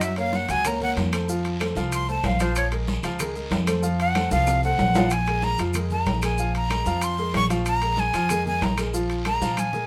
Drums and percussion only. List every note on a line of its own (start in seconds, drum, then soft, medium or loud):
0.01 high conga soft
0.01 high timbale medium
0.01 long guiro medium
0.01 claves medium
0.01 maracas medium
0.16 high conga soft
0.16 high timbale medium
0.16 maracas soft
0.33 high conga medium
0.33 low timbale medium
0.33 short guiro medium
0.33 maracas soft
0.48 high conga soft
0.48 high timbale medium
0.48 short guiro medium
0.48 maracas medium
0.64 high conga soft
0.64 low conga medium
0.64 high timbale medium
0.64 long guiro medium
0.64 claves medium
0.64 maracas medium
0.81 high conga soft
0.81 low conga medium
0.81 maracas soft
0.97 high conga medium
0.97 high timbale medium
0.97 low timbale medium
0.97 short guiro medium
0.97 maracas soft
1.12 high timbale loud
1.12 short guiro medium
1.12 claves medium
1.12 maracas medium
1.28 high conga soft
1.28 long guiro medium
1.28 maracas medium
1.45 high conga soft
1.45 high timbale medium
1.45 maracas soft
1.60 high conga medium
1.60 high timbale medium
1.60 low timbale medium
1.60 short guiro medium
1.60 claves medium
1.60 maracas soft
1.75 high conga medium
1.75 short guiro medium
1.75 maracas medium
1.91 high conga soft
1.91 high timbale medium
1.91 long guiro medium
1.91 claves medium
1.91 maracas medium
2.08 high conga soft
2.08 maracas soft
2.23 high conga medium
2.23 high timbale medium
2.23 low timbale medium
2.23 short guiro medium
2.23 maracas soft
2.40 high conga medium
2.40 high timbale medium
2.40 short guiro medium
2.40 maracas medium
2.55 high conga soft
2.55 high timbale medium
2.55 long guiro medium
2.55 claves medium
2.55 maracas medium
2.71 high conga soft
2.71 high timbale medium
2.71 maracas soft
2.87 high conga medium
2.87 low timbale medium
2.87 short guiro medium
2.87 maracas soft
3.03 high conga soft
3.03 high timbale medium
3.03 short guiro medium
3.03 maracas medium
3.19 high conga soft
3.19 low conga medium
3.19 high timbale medium
3.19 long guiro medium
3.19 claves medium
3.19 maracas loud
3.35 high conga soft
3.35 maracas soft
3.51 high conga medium
3.51 high timbale medium
3.51 low timbale medium
3.51 short guiro medium
3.51 maracas soft
3.67 high conga medium
3.67 high timbale loud
3.67 short guiro medium
3.67 claves medium
3.67 maracas medium
3.83 high conga soft
3.83 long guiro medium
3.83 maracas medium
4.00 high conga soft
4.00 high timbale medium
4.00 maracas soft
4.15 high conga medium
4.15 high timbale medium
4.15 low timbale medium
4.15 short guiro medium
4.15 claves medium
4.15 maracas soft
4.31 high conga loud
4.31 short guiro medium
4.31 maracas medium
4.47 high conga soft
4.47 high timbale medium
4.47 long guiro medium
4.47 claves medium
4.47 maracas medium
4.63 high conga soft
4.63 maracas soft
4.78 high conga medium
4.78 low timbale medium
4.78 short guiro medium
4.78 maracas soft
4.94 high conga medium
4.94 low timbale loud
4.94 short guiro medium
4.94 maracas medium
5.10 high timbale medium
5.10 long guiro medium
5.10 claves medium
5.10 maracas medium
5.26 high conga soft
5.26 high timbale medium
5.26 maracas soft
5.42 high conga medium
5.42 low timbale medium
5.42 short guiro medium
5.42 maracas soft
5.58 high conga soft
5.58 high timbale medium
5.58 short guiro medium
5.58 maracas medium
5.74 high conga soft
5.74 low conga medium
5.74 high timbale medium
5.74 long guiro medium
5.74 claves medium
5.74 maracas medium
5.90 high conga soft
5.90 low conga medium
5.90 maracas soft
6.06 high conga medium
6.06 high timbale medium
6.06 low timbale medium
6.06 short guiro medium
6.06 maracas soft
6.22 high timbale medium
6.22 short guiro medium
6.22 claves medium
6.22 maracas medium
6.38 high conga soft
6.38 long guiro medium
6.38 maracas medium
6.54 high conga soft
6.54 high timbale medium
6.54 maracas soft
6.70 high conga medium
6.70 high timbale medium
6.70 low timbale medium
6.70 short guiro medium
6.70 claves medium
6.70 maracas soft
6.86 high conga medium
6.86 short guiro medium
6.86 maracas medium
7.01 high conga soft
7.01 high timbale medium
7.01 long guiro medium
7.01 claves medium
7.01 maracas medium
7.18 high conga soft
7.18 maracas soft
7.34 high conga medium
7.34 high timbale medium
7.34 low timbale medium
7.34 short guiro medium
7.34 maracas soft
7.50 high conga medium
7.50 high timbale medium
7.50 short guiro medium
7.50 maracas medium
7.66 high conga soft
7.66 high timbale medium
7.66 long guiro medium
7.66 claves medium
7.66 maracas medium
7.82 high conga soft
7.82 high timbale medium
7.82 maracas soft
7.97 high conga medium
7.97 low timbale medium
7.97 short guiro medium
7.97 maracas soft
8.13 high conga soft
8.13 high timbale medium
8.13 short guiro medium
8.13 maracas medium
8.29 high conga soft
8.29 low conga medium
8.29 high timbale medium
8.29 long guiro medium
8.29 claves medium
8.29 maracas medium
8.46 high conga soft
8.46 low conga medium
8.46 maracas soft
8.61 high conga medium
8.61 high timbale medium
8.61 low timbale medium
8.61 short guiro medium
8.61 maracas soft
8.77 high conga medium
8.77 high timbale loud
8.77 short guiro medium
8.77 claves medium
8.77 maracas medium
8.94 high conga soft
8.94 long guiro medium
8.94 maracas medium
9.10 high conga soft
9.10 high timbale medium
9.10 maracas soft
9.25 high conga medium
9.25 high timbale medium
9.25 low timbale medium
9.25 short guiro medium
9.25 claves medium
9.25 maracas soft
9.42 high conga medium
9.42 short guiro medium
9.42 maracas medium
9.57 high conga medium
9.57 high timbale medium
9.57 long guiro medium
9.57 claves medium
9.57 maracas medium
9.73 low conga medium
9.73 maracas soft